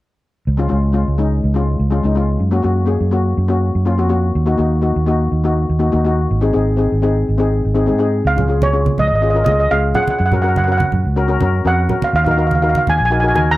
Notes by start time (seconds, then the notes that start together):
0.47 C#2
0.57 G#3 C#4 F4
0.68 C#2 G#3 C#4 F4
0.93 G#3 C#4 F4
1.08 C#2
1.18 G#3 C#4 D#4
1.44 C#2
1.54 G#3 C#4 F4
1.79 C#2
1.90 G#3 C#4 F4
2.04 C#2 G#3 C#4 D#4
2.15 G#3 C#4 F4
2.40 F#2
2.51 A#3 C#4 F#4
2.62 F#2 A#3 C#4 F#4
2.86 A#3 C#4 G#4
3.01 F#2
3.11 A#3 C#4 F#4
3.37 F#2
3.48 A#3 C#4 F#4
3.75 F#2
3.85 A#3 C#4 F4
3.98 F2 A#3 C#4 F#4
4.09 A#3 C#4 F#4
4.35 D#2
4.46 A#3 D#4 F#4
4.58 D#2 A#3 D#4 F#4
4.81 A#3 D#4 F#4
4.96 D#2
5.06 A#3 D#4 F#4
5.32 D#2
5.44 A#3 D#4 F#4
5.69 D#2
5.79 A#3 D#4 F#4
5.92 D#2 A#3 D#4 F#4
6.04 A#3 D#4 F#4
6.31 G#1
6.41 C4 D#4 G#4
6.53 G#1 C4 D#4 G#4
6.77 C4 D#4 G#4
6.92 G#1
7.02 C4 D#4 G#4
7.29 G#1
7.38 C4 D#4 G#4
7.65 G#1
7.75 C4 D#4 G#4
7.86 G#2 C4 D#4 G#4
7.98 C4 D#4 G#4
8.25 C#2 F5
8.36 C#4 F4 G#4, low conga
8.48 C#4 F4 G#4
8.62 C#5, high conga
8.73 C#4 F4 G#4
8.86 high conga
8.98 C#2 D#5, low conga
9.07 G#1 D#5
9.15 D#5
9.22 C#4 F4 G#4 D#5
9.30 C#4 D#5
9.35 F4 A#4 D#5
9.44 C#2 C#4 F4 G#4 D#5, high conga
9.52 D#5
9.60 D#5
9.71 C#2 C#4 F4 G#4 F5
9.95 C#4 F4 G#4 F#5, low conga
10.03 F#5
10.07 F#5, high conga
10.19 F#2 F#5
10.26 F#5
10.31 C#4 F#4 A#4 F#5, low conga
10.42 C#4 F#4 A#4 F#5
10.48 F#5
10.56 F#5, high conga
10.64 C#4 F#5
10.68 F#4 A#4
10.72 F#5
10.78 F#5, high conga
10.92 F#2, low conga
11.05 C#2
11.16 C#4 F#4 A#4
11.28 C#4 F#4 A#4
11.40 F#2 C#4 F#4 A#4, high conga
11.65 F2 C#4 F#4 A#4 F#5
11.89 C#4 F#4 A#4, low conga
12.02 F5, high conga
12.13 D#2 F5
12.25 D#4 F#4 A#4 F5, low conga
12.31 F5
12.37 D#4 F#4 A#4 F5
12.47 F5
12.51 F5, high conga
12.62 D#4 F#4 A#4 F5
12.69 F5
12.75 F5, high conga
12.87 D#2 G#5, low conga
12.98 A#1 G#5
13.05 G#5
13.10 D#4 F#4 A#4 G#5
13.20 D#4 F#4 G#5
13.24 A#4
13.28 G#5
13.34 D#2 D#4 F#4 A#4 G#5, high conga
13.51 A#5